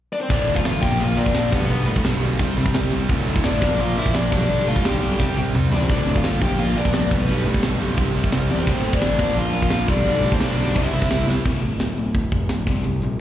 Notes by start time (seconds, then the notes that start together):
0.13 D4 D5
0.21 C4 C5
0.29 D1 D2 A2 D3 D4 D5, kick, crash
0.47 D1 D2 A2 D3, crash
0.56 F4 F5, kick
0.65 A1 D2 A2 D3, snare, crash
0.81 A#1 A#2 F3 A#3 G4 G5, kick, crash
0.99 A#1 A#2 F3 A#3 F4 F5, crash
1.17 A#1 A#2 F3 A#3 D4 D5, crash
1.26 kick
1.35 A#1 A#2 F3 A#3 D4 D5, snare, crash
1.52 B1 G2 D3 G3 B3 B4, kick, crash
1.69 B1 G2 D3 G3, crash
1.87 G2 A2 D3 G3, crash
1.96 kick
2.04 B1 G2 D3 G3, snare, crash
2.22 B1 G2 D3 G3, crash
2.39 C2 C3 G3 C4, kick, crash
2.56 C2 C3 G3 C4, crash
2.66 kick
2.74 C2 C3 G3 C4, snare, crash
2.92 C2 C3 G3 C4, crash
3.09 D1 D2 A2 D3, kick, crash
3.27 D1 D2 A2 D3, crash
3.36 kick
3.44 D1 D2 A2 D3 D4 D5, snare, crash
3.62 A#1 A#2 F3 A#3, kick, crash
3.79 A#1 A#2 F3 A#3 F4 F5, crash
3.97 A#1 A#2 F3 A#3 E4 E5, crash
4.06 kick
4.14 A#1 A#2 F3 A#3 D4 D5, snare, crash
4.32 B1 G2 D3 G3 D4 D5, kick, crash
4.49 B1 G2 D3 G3, crash
4.67 G2 A2 D3 G3 F4 F5, crash
4.76 kick
4.84 B1 G2 D3 G3 G4 G5, snare, crash
5.02 B1 G2 D3 G3, crash
5.19 C2 C3 G3 C4, kick, snare
5.37 C2 C3 G3 C4, high tom
5.53 C2 C3 G3 C4, mid tom
5.71 E2 C3 G3 C4 D4 D5, floor tom
5.83 C4 C5
5.89 D1 D2 A2 D3 D4 D5, kick, crash
6.06 D1 D2 A2 D3, crash
6.16 F4 F5, kick
6.23 D1 D2 A2 D3, snare, crash
6.41 A#1 A#2 F3 A#3 G4 G5, kick, crash
6.58 A#1 A#2 F3 A#3 F4 F5, crash
6.76 A#1 A#2 F3 A#3 D4 D5, crash
6.85 kick
6.93 C2 A#2 F3 A#3 D4 D5, snare, crash
7.11 B1 G2 D3 G3 B3 B4, kick, crash
7.29 B1 G2 D3 G3, crash
7.46 G2 A2 D3 G3, crash
7.54 kick
7.63 B1 G2 D3 G3, snare, crash
7.80 B1 G2 D3 G3, crash
7.97 C2 C3 G3 C4, kick, crash
8.15 C2 C3 G3 C4, crash
8.24 kick
8.32 C2 C3 G3 C4, snare, crash
8.49 E2 C3 G3 C4 D4 D5, crash
8.59 C4 C5
8.66 D1 D2 A2 D3, kick, crash
8.83 D1 D2 A2 D3, crash
8.93 D4 D5, kick
9.01 A1 D2 A2 D3, snare, crash
9.19 A#1 A#2 F3 A#3, kick, crash
9.36 A#1 A#2 F3 A#3 F4 F5, crash
9.53 A#1 A#2 F3 A#3, crash
9.62 F4 F5, kick
9.70 A#1 A#2 F3 A#3, snare, crash
9.88 B1 G2 D3 G3 D4 D5, kick, crash
10.05 B1 G2 D3 G3, crash
10.23 G2 A2 D3 G3, crash
10.32 C4 C5, kick
10.40 B1 G2 D3 G3 D4 D5, snare, crash
10.57 B1 G2 D3 G3, crash
10.76 C2 C3 G3 C4 E4 E5, kick, crash
10.92 C2 C3 G3 C4, crash
11.02 kick
11.10 C2 C3 G3 C4, snare, crash
11.27 C2 C3 G3 C4, snare
11.45 D1 D2 A2 D3, kick, crash
11.62 D1 D2 A2, open hi-hat
11.80 D1 D2 A2, snare, open hi-hat
11.97 D1 D2 A2, open hi-hat
12.14 D1 D2 A2, kick, open hi-hat
12.32 F1 D2 A2, kick, open hi-hat
12.49 D1 D2 A2, snare, open hi-hat
12.67 C2 C3 G3 C4, kick, open hi-hat
12.84 C2 C3 G3, open hi-hat
13.02 A#1 C3 G3, open hi-hat